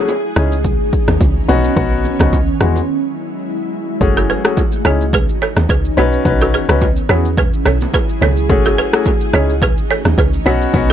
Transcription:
Already playing: grand piano A3 C#4 F#4 G#4, ambient pad G#4
0.08 high bongo, shaker
0.36 log drum bass C#2, grand piano C#4 D#4 E4 G#4, ambient pad C#4, cross-stick, shaker
0.52 shaker
0.64 kick, low conga, shaker
0.93 kick, shaker
1.08 log drum bass D#2, cross-stick, low bongo, shaker
1.21 log drum bass C#2, kick, high bongo, shaker
1.48 log drum bass B1, grand piano B3 C#4 D#4 F#4, low bongo, low conga, shaker
1.64 shaker
1.76 log drum bass B1, grand piano B3 C#4 D#4 F#4, kick, low conga, shaker
2.05 low bongo, shaker
2.19 log drum bass C#2, grand piano B3 C#4 D#4 F#4, kick, cross-stick, low bongo, shaker
2.33 kick, high bongo, shaker
2.60 log drum bass E2, ambient pad F#3 G#3 E4, grand piano G#3 B3 E4 F#4, cross-stick, high bongo, shaker
2.76 high bongo, shaker
4.01 log drum bass F#1, grand piano A3 C#4 F#4 G#4, kick, low conga, shaker
4.16 balafon F#4 A4, shaker
4.30 balafon G#4 B4
4.44 grand piano A3 C#4 F#4 G#4, cross-stick, shaker
4.57 kick, high bongo, shaker
4.72 shaker
4.85 log drum bass C#2, grand piano C#4 D#4 E4 G#4, balafon G#4 C#5, cross-stick, high bongo, shaker
5.01 shaker
5.13 balafon G#4 B4, kick, low conga, shaker
5.29 shaker
5.42 balafon A4 C#5
5.56 log drum bass D#2, cross-stick, low bongo, shaker
5.69 log drum bass C#2, balafon G#4 B4, kick, high bongo, shaker
5.85 shaker
5.97 log drum bass B1, grand piano C#4 D#4 F#4 B4, balafon F#4 C#5, low bongo, low conga
6.13 shaker
6.25 log drum bass B1, grand piano C#4 D#4 F#4 B4, kick, low conga, shaker
6.41 balafon F#4 A4, shaker
6.54 balafon G#4 B4
6.69 log drum bass C#2, grand piano C#4 D#4 F#4 B4, cross-stick, shaker
6.81 kick, high bongo, shaker
6.96 shaker
7.09 log drum bass E2, ambient pad F#3 E4 G#4, grand piano B3 E4 F#4 G#4, balafon G#4 C#5, cross-stick, high bongo, shaker
7.25 shaker
7.37 balafon G#4 B4, kick, low conga, shaker
7.53 shaker
7.65 log drum bass B1, balafon A4 C#5, cross-stick
7.81 low bongo, shaker
7.94 balafon G#4 B4, kick, high bongo, shaker
8.09 shaker
8.22 log drum bass C#2, balafon A4 C#5, low bongo, low conga
8.37 shaker
8.49 log drum bass F#1, grand piano A3 C#4 F#4 G#4, kick, low conga, shaker
8.65 balafon F#4 A4, shaker
8.78 balafon G#4 B4
8.93 grand piano A3 C#4 F#4 G#4, cross-stick, shaker
9.05 kick, high bongo, shaker
9.21 shaker
9.33 log drum bass C#2, grand piano C#4 D#4 E4 G#4, ambient pad C#4, balafon G#4 C#5, cross-stick, high bongo, shaker
9.49 shaker
9.62 balafon G#4 B4, kick, low conga, shaker
9.78 shaker
9.91 balafon A4 C#5
10.05 log drum bass D#2, cross-stick, low bongo, shaker
10.18 log drum bass C#2, balafon G#4 B4, kick, high bongo, shaker
10.33 shaker
10.46 log drum bass B1, grand piano B3 C#4 D#4 F#4, balafon F#4 C#5, low bongo, low conga
10.61 shaker
10.74 log drum bass B1, grand piano B3 C#4 D#4 F#4, kick, low conga, shaker
10.89 shaker

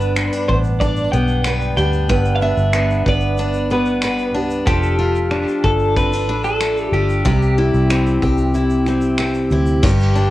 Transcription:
Already playing: fingered electric bass G1, steel-string acoustic guitar G2 B3 D4 B4, clean electric guitar B4
0.00 shaker
0.16 steel-string acoustic guitar C4, finger snap, shaker
0.32 steel-string acoustic guitar D4, shaker
0.48 fingered electric bass A1, steel-string acoustic guitar B3, clean electric guitar C5, kick
0.64 shaker
0.80 steel-string acoustic guitar D4, clean electric guitar D5, kick, shaker
0.96 shaker
1.12 fingered electric bass B1, steel-string acoustic guitar B3 G4, clean electric guitar G5, shaker
1.28 shaker
1.44 steel-string acoustic guitar B3 B4, finger snap, shaker
1.61 shaker
1.77 fingered electric bass D2, steel-string acoustic guitar D4 G4, clean electric guitar G5, shaker
1.93 shaker
2.09 fingered electric bass G1, steel-string acoustic guitar G2 B3 B4, kick, shaker
2.25 shaker
2.35 clean electric guitar F5
2.41 steel-string acoustic guitar B3 D4, clean electric guitar E5
2.57 fingered electric bass G1, shaker
2.73 steel-string acoustic guitar B3 D4, finger snap, shaker
2.90 shaker
3.06 fingered electric bass G1, steel-string acoustic guitar B3 B4, clean electric guitar D5, kick
3.20 shaker
3.38 steel-string acoustic guitar D4, shaker
3.53 shaker
3.70 steel-string acoustic guitar B3 G4, clean electric guitar B4
3.85 shaker
4.02 steel-string acoustic guitar B3 B4, finger snap, shaker
4.18 shaker
4.34 fingered electric bass C2, steel-string acoustic guitar D4 G4
4.50 shaker
4.67 fingered electric bass F1, steel-string acoustic guitar F3 A4, clean electric guitar G4, kick, shaker
4.83 shaker
4.99 steel-string acoustic guitar A3 F4
5.16 shaker
5.31 steel-string acoustic guitar D4, finger snap, shaker
5.48 shaker
5.64 fingered electric bass G1, steel-string acoustic guitar A3 A4, clean electric guitar A4, kick
5.79 shaker
5.97 steel-string acoustic guitar C4 F4, clean electric guitar B4, kick, shaker
6.12 steel-string acoustic guitar D4, shaker
6.28 fingered electric bass A1, steel-string acoustic guitar D4 A4
6.44 clean electric guitar A4, shaker
6.61 steel-string acoustic guitar A3 A4, finger snap, shaker
6.77 shaker
6.92 fingered electric bass G1, steel-string acoustic guitar F4 A4, clean electric guitar G4
7.10 shaker
7.25 fingered electric bass C2, steel-string acoustic guitar C3 G3 G4, kick, shaker
7.42 shaker
7.58 steel-string acoustic guitar C4 E4
7.74 fingered electric bass C2, shaker
7.90 steel-string acoustic guitar C4 E4, finger snap, shaker
8.06 shaker
8.22 fingered electric bass C2, steel-string acoustic guitar C4 G4, kick
8.38 shaker
8.54 steel-string acoustic guitar E4, shaker
8.70 shaker
8.86 steel-string acoustic guitar C4 G4, finger snap, shaker
9.01 shaker
9.18 steel-string acoustic guitar C4 G4, finger snap, shaker
9.34 shaker
9.51 fingered electric bass D2, steel-string acoustic guitar E4 G4, shaker
9.66 shaker
9.83 fingered electric bass G1, steel-string acoustic guitar G2 G4, kick, crash
9.99 shaker
10.15 steel-string acoustic guitar D4, shaker

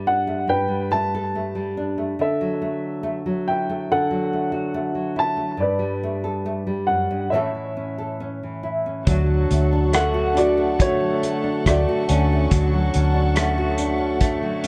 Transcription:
Already playing: nylon-string guitar G2 G3 A3 A4, upright piano B4 D5
0.07 nylon-string guitar D4, upright piano F#5
0.27 nylon-string guitar A3
0.48 nylon-string guitar G2, upright piano B4 G5
0.68 nylon-string guitar G3
0.91 nylon-string guitar A3, upright piano A5
1.15 nylon-string guitar A4
1.35 nylon-string guitar A3
1.55 nylon-string guitar G3
1.77 nylon-string guitar D4
1.98 nylon-string guitar A3
2.19 nylon-string guitar D3, upright piano A4 E5
2.41 nylon-string guitar F#3
2.62 nylon-string guitar A3
3.03 nylon-string guitar A3
3.26 nylon-string guitar F#3
3.48 nylon-string guitar E4, upright piano G5
3.70 nylon-string guitar A3
3.92 nylon-string guitar D3, upright piano A4 F#5
4.11 nylon-string guitar F#3
4.33 nylon-string guitar A3
4.52 nylon-string guitar F#4
4.74 nylon-string guitar A3
4.95 nylon-string guitar F#3
5.16 nylon-string guitar E4, upright piano A5
5.37 nylon-string guitar A3
5.57 nylon-string guitar G2, upright piano D5
5.62 upright piano B4
5.79 nylon-string guitar G3
6.03 nylon-string guitar A3
6.24 nylon-string guitar A4
6.46 nylon-string guitar A3
6.67 nylon-string guitar G3
6.87 nylon-string guitar F#2, upright piano F#5
7.11 nylon-string guitar G2
7.30 nylon-string guitar A2 E3, upright piano C#5 E5
7.34 nylon-string guitar C#4 E4 A4
7.55 nylon-string guitar E3
7.77 nylon-string guitar C#4
7.98 nylon-string guitar A4
8.20 nylon-string guitar C#4
8.43 nylon-string guitar E3
8.63 nylon-string guitar E4
8.86 nylon-string guitar C#4
9.06 fingered electric bass D2, nylon-string guitar D3 F#3 A3 D4 F#4, clean electric guitar F#3, string section A4 F#5 A5 C#6, kick, closed hi-hat
9.26 nylon-string guitar F#3
9.51 fingered electric bass D2, nylon-string guitar A3, closed hi-hat
9.73 nylon-string guitar D4
9.93 nylon-string guitar A3, clean electric guitar A3 F#4, upright piano A4 F#5, cross-stick, closed hi-hat
10.14 nylon-string guitar F#4
10.35 nylon-string guitar D4, upright piano F#4 D5, closed hi-hat
10.58 nylon-string guitar A3
10.79 nylon-string guitar D3, clean electric guitar A3, upright piano F#4 C#5, kick, closed hi-hat
11.01 nylon-string guitar F#3
11.23 nylon-string guitar A3, closed hi-hat
11.44 nylon-string guitar D4
11.66 fingered electric bass D2, nylon-string guitar A3, clean electric guitar A3, upright piano F#4 D5, kick, cross-stick, closed hi-hat
11.89 nylon-string guitar F#4
12.09 fingered electric bass D2, clean electric guitar C#4, nylon-string guitar D4, closed hi-hat
12.33 nylon-string guitar A3
12.51 fingered electric bass D2, nylon-string guitar D3, clean electric guitar F#3, kick, closed hi-hat
12.73 nylon-string guitar F#3
12.94 fingered electric bass D2, nylon-string guitar C#4, closed hi-hat
13.14 nylon-string guitar D4
13.35 clean electric guitar A3 F#4, nylon-string guitar C#4, cross-stick, closed hi-hat
13.58 nylon-string guitar F#4
13.78 nylon-string guitar D4, closed hi-hat
13.98 nylon-string guitar C#4
14.20 nylon-string guitar D3, clean electric guitar A3, kick, closed hi-hat
14.43 nylon-string guitar F#3
14.64 nylon-string guitar C#4, closed hi-hat

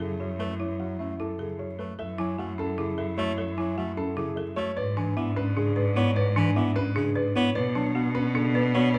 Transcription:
Already playing: cello F#2, french horn E4
0.00 bass clarinet C#3, grand piano G#4, marimba A4
0.20 marimba F#4, grand piano C#5
0.39 bass clarinet A3, marimba A4, grand piano B4
0.60 marimba E4, grand piano C#5
0.79 bass clarinet F#3, marimba F#4, grand piano F#5
0.99 bass clarinet A3, marimba C#4, grand piano E5
1.20 marimba E4, grand piano A4
1.39 bass clarinet C#3, grand piano G#4, marimba A4
1.59 marimba F#4, grand piano C#5
1.79 bass clarinet A3, marimba A4, grand piano B4
1.98 cello F#2, french horn E4, marimba A4, grand piano E5
2.18 bass clarinet F#3, marimba E4, grand piano G#5
2.38 bass clarinet A3, marimba F#4, grand piano F#5
2.58 marimba C#4, grand piano A4
2.78 bass clarinet C#3, marimba E4, grand piano G#4
2.98 marimba A4, grand piano E5
3.18 bass clarinet A3, marimba F#4, grand piano C#5
3.38 marimba A4, grand piano E5
3.57 bass clarinet F#3, marimba E4, grand piano G#5
3.78 bass clarinet A3, marimba F#4, grand piano F#5
3.97 marimba C#4, grand piano A4
4.17 bass clarinet C#3, marimba E4, grand piano G#4
4.36 marimba A4, grand piano E5
4.56 bass clarinet A3, marimba F#4, grand piano C#5
4.77 cello G#2, french horn D4, marimba B4, grand piano D5
4.97 bass clarinet E3, marimba D4, grand piano G#5
5.17 bass clarinet B3, marimba E4, grand piano E5
5.36 marimba C#4, grand piano B4
5.57 bass clarinet C#3, marimba D4, grand piano G#4
5.76 marimba B4, grand piano D5
5.96 bass clarinet B3, marimba E4, grand piano C#5
6.16 marimba B4, grand piano D5
6.36 bass clarinet E3, marimba D4, grand piano G#5
6.56 bass clarinet B3, marimba E4, grand piano E5
6.76 marimba C#4, grand piano B4
6.96 bass clarinet C#3, marimba D4, grand piano G#4
7.15 marimba B4, grand piano D5
7.36 bass clarinet B3, marimba E4, grand piano C#5
7.54 cello B2, french horn D4, marimba B4, grand piano D5
7.75 bass clarinet F#3, marimba D4, grand piano A5
7.95 bass clarinet B3, marimba F#4, grand piano F#5
8.15 marimba C#4, grand piano B4
8.35 bass clarinet C#3, marimba D4, grand piano A4
8.54 marimba B4, grand piano D5
8.74 bass clarinet B3, marimba F#4, grand piano C#5
8.94 marimba B4, grand piano D5

